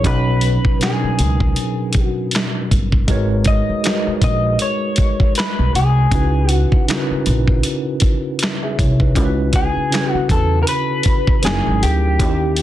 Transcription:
0.03 upright bass B1, tine electric piano B2 F#3 C#4 D#4 B4, clean electric guitar B4, kick, closed hi-hat
0.41 closed hi-hat
0.65 muted upright bass stroke, kick
0.80 tine electric piano B2 F#3 C#4 D4 A#4, clean electric guitar G#4, snare, clap, closed hi-hat
0.89 tine electric piano D#4
1.04 muted upright bass stroke
1.19 upright bass C#2, closed hi-hat
1.40 kick
1.56 closed hi-hat
1.93 kick, closed hi-hat
2.04 clean electric guitar F#4
2.31 closed hi-hat
2.35 snare, clap
2.71 upright bass G1, kick, closed hi-hat
2.92 kick
3.08 upright bass G#1, tine electric piano G#3 D#4 F#4 A#4 B4 C#5, kick, closed hi-hat
3.44 clean electric guitar D#5, kick, closed hi-hat
3.69 muted upright bass stroke
3.83 tine electric piano G#3 D#4 F#4 A#4 B4 D#5, snare, clap, closed hi-hat
4.07 muted upright bass stroke
4.22 upright bass A#1, clean electric guitar D#5, kick, closed hi-hat
4.59 clean electric guitar C#5, closed hi-hat
4.96 kick, closed hi-hat
5.20 kick
5.35 clean electric guitar B4, closed hi-hat
5.39 snare, clap
5.59 upright bass B1
5.74 upright bass C2, clean electric guitar G#4, closed hi-hat
6.11 upright bass C#2, tine electric piano C#3 C#4 D#4 E4 F#4 B4, kick, closed hi-hat
6.49 clean electric guitar F#4, closed hi-hat
6.72 muted upright bass stroke, kick
6.87 tine electric piano C#3 C#4 D#4 E4 F#4 A#4, snare, clap, closed hi-hat
6.98 tine electric piano B4
7.10 muted upright bass stroke
7.26 upright bass A#1, closed hi-hat
7.48 kick
7.63 closed hi-hat
8.00 kick, closed hi-hat
8.39 closed hi-hat
8.43 snare, clap
8.63 tine electric piano G#4 E5
8.78 upright bass C2, tine electric piano E4 C#5, kick, closed hi-hat
9.00 tine electric piano D#4 B4, kick
9.14 upright bass C#2, tine electric piano C#3 C#4 E4 F#4 A#4, kick, closed hi-hat
9.25 tine electric piano B4
9.53 clean electric guitar G#4, kick, closed hi-hat
9.76 muted upright bass stroke
9.90 tine electric piano C#3 C#4 E4 F#4 A4, closed hi-hat
9.95 snare, clap
10.01 tine electric piano B4
10.13 clean electric guitar F#4, muted upright bass stroke
10.29 upright bass E2, clean electric guitar A4, kick, closed hi-hat
10.63 clean electric guitar A#4
10.67 clean electric guitar B4, closed hi-hat
11.03 kick, closed hi-hat
11.27 kick
11.43 upright bass F#1, tine electric piano F#3 C#4 D#4 E4 G#4, clean electric guitar G#4, closed hi-hat
11.47 tine electric piano A#4, snare, clap
11.67 upright bass G#1
11.83 upright bass D2, clean electric guitar G4, closed hi-hat
12.19 upright bass D#2, tine electric piano D#3 A#3 C#4 E4 F#4, kick, closed hi-hat
12.29 tine electric piano G4
12.56 closed hi-hat

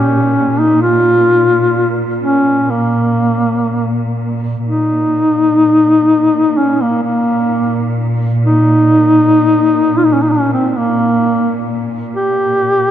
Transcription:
Already playing: cello section A#2, duduk C#4
0.59 duduk D#4
0.82 duduk F4
2.23 duduk C#4
2.71 duduk A#3
4.66 cello section A#2, duduk D#4
6.57 duduk C#4
6.82 duduk A#3
7.03 duduk A#3
8.46 duduk D#4
9.97 duduk F4
10.05 duduk D#4
10.13 duduk C#4
10.23 duduk D#4
10.31 duduk C#4
10.53 duduk C4
10.70 duduk C4
10.78 duduk A#3
12.16 duduk G4

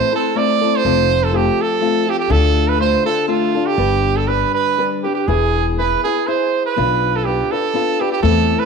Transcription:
Already playing: nylon-string guitar A3 C4 E4 A4, trumpet C5
0.12 nylon-string guitar A3 C4 E4 A4, trumpet A4
0.35 nylon-string guitar A3 C4 E4 A4, trumpet D5
0.61 nylon-string guitar A3 C4 E4 A4
0.76 trumpet C5
0.84 upright bass F1, nylon-string guitar F3 A3 C4 F4 A4
1.24 trumpet A4
1.32 nylon-string guitar A3 C4 F4 A4, trumpet G4
1.61 trumpet A4
1.81 nylon-string guitar A3 C4 F4 A4
2.07 nylon-string guitar C4 F4 A4, trumpet G4
2.19 trumpet G4
2.29 upright bass D2, nylon-string guitar D3 A3 D4 F4 A4, trumpet A4
2.68 trumpet B4
2.79 nylon-string guitar A3 D4 F4 A4, trumpet C5
3.06 nylon-string guitar D4 F4 A4, trumpet A4
3.28 nylon-string guitar A3 D4 F4 A4, trumpet F4
3.55 nylon-string guitar D4 F4 A4
3.66 trumpet G4
3.78 upright bass G1, nylon-string guitar G3 D4 G4 B4
4.17 trumpet A4
4.28 nylon-string guitar G3 D4 G4 B4, trumpet B4
4.54 trumpet B4
4.78 nylon-string guitar G3 D4 G4 B4
5.03 nylon-string guitar D4 G4 B4, trumpet G4
5.15 trumpet G4
5.27 upright bass E1, nylon-string guitar E3 B3 E4 G#4 B4, trumpet G#4
5.78 nylon-string guitar B3 E4 G#4 B4, trumpet B4
6.04 nylon-string guitar E4 G#4 B4, trumpet G#4
6.27 nylon-string guitar E4 G#4, trumpet C5
6.66 trumpet B4
6.76 upright bass B1, nylon-string guitar B3 D4 F4 B4
7.16 trumpet A4
7.25 nylon-string guitar B3 D4 F4 B4, trumpet G4
7.51 nylon-string guitar D4 F4 B4, trumpet A4
7.74 nylon-string guitar B3 D4 F4 B4
8.01 nylon-string guitar D4 F4 B4, trumpet G4
8.12 trumpet G4
8.22 upright bass E2, nylon-string guitar E3 A3 C4 E4 A4, trumpet A4
8.59 trumpet B4

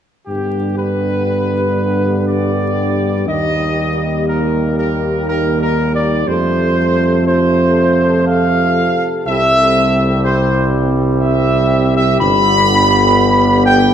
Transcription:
0.27 tuba G2, trombone section D3 G3, french horn section B3 G4, trumpet section G4
0.78 trumpet section B4
2.28 trumpet section D5
3.26 tuba D#2, trombone section D#3, french horn section A#3, trumpet section D#5
4.28 trumpet section A#4
4.79 trumpet section A#4
5.28 trumpet section A#4
5.62 trumpet section A#4
5.95 trumpet section D5
6.27 tuba F2, trombone section C3, french horn section A3 A4, trumpet section C5
7.27 trombone section F3, trumpet section C5
8.28 trumpet section F5
9.26 tuba C2, trombone section G3, french horn section C4, trumpet section E5
10.24 french horn section G4, trumpet section C5
11.22 trumpet section E5
11.96 trumpet section E5
12.20 tuba G1, trombone section D3, french horn section B3, trumpet section B5
13.66 trumpet section G5

